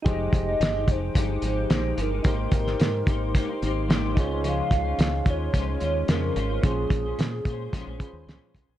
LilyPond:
<<
  \new Staff \with { instrumentName = "Soft synth lead" } { \time 4/4 \key f \minor \tempo 4 = 110 ees''4. c''4 c''4 bes'8~ | bes'2.~ bes'8 r8 | f''4. des''4. bes'4 | aes'2. r4 | }
  \new Staff \with { instrumentName = "Synth keys" } { \time 4/4 \key f \minor <ees' g' aes' c''>1 | <ees' g' bes' c''>2.~ <ees' g' bes' c''>8 <ees' f' aes' des''>8~ | <ees' f' aes' des''>2.~ <ees' f' aes' des''>8 r8 | <des' f' aes' c''>2~ <des' f' aes' c''>8 <des' f' aes' ces'' c''>4. | }
  \new Staff \with { instrumentName = "Clean electric guitar" } { \time 4/4 \key f \minor <f aes ees' g'>8. <aes ees' g'>8 <aes ees' g'>16 <f aes ees' g'>8 <f aes ees' g'>16 <aes ees' g'>16 <f aes ees' g'>8 <f aes ees' g'>8 <f aes ees' g'>16 <aes ees' g'>16 | <aes bes ees' g' c''>8. <ees' g' c''>8. <bes ees' g' c''>8 <aes bes ees' g' c''>16 <ees' g' c''>16 <bes ees' g' c''>8 <aes bes ees' g' c''>8 <aes des' f' c''>16 <aes des' f' c''>16 | <des f aes des' f' c''>8. <aes des' f' c''>8. <aes des' f' c''>8 <des f aes des' f' c''>16 <aes des' f' c''>16 <aes des' f' c''>8 <des f aes des' f' c''>8 <aes des' f' c''>16 <aes des' f' c''>16 | <bes, f aes des' aes' c''>8. <aes des' aes' c''>8. <aes des' aes' c''>8 <bes, f aes des' aes' c''>16 <aes des' aes' c''>16 <aes des' aes' c''>8 <bes, f aes des' aes' c''>8 <aes des' aes' c''>16 <aes des' aes' c''>16 | }
  \new Staff \with { instrumentName = "Fingered electric bass" } { \clef bass \time 4/4 \key f \minor f,,8 f,,8 g,,8 f,,8 g,,8 aes,,8 bes,,8 g,,8 | aes,,8 aes,,8 aes,8 aes,,8. r16 aes,,4 des,8~ | des,8 des,8 des,8 ees,8 des,8 ees,8 f,8 aes,,8 | bes,,8 bes,,8 bes,8 bes,8 bes,,16 bes,,16 r16 ees,16 des,16 r16 c,16 bes,,16 | }
  \new DrumStaff \with { instrumentName = "Drums" } \drummode { \time 4/4 <hh bd>8 <hh bd>8 <hh sn>8 <hh bd>8 <hh bd>8 hh8 <hh sn>8 hh8 | <hh bd>8 <hh bd>16 sn16 <hh sn>8 <hh bd>8 <hh bd>8 hh8 <hh sn>8 <hh bd>8 | hh8 <hh bd>8 <hh sn>8 <hh bd>8 <hh bd>8 hh8 <hh sn>8 hh8 | <hh bd>8 <hh bd>8 <hh sn>8 <hh bd>8 <hh bd>8 <hh bd>8 <hh sn>8 <hh bd>8 | }
>>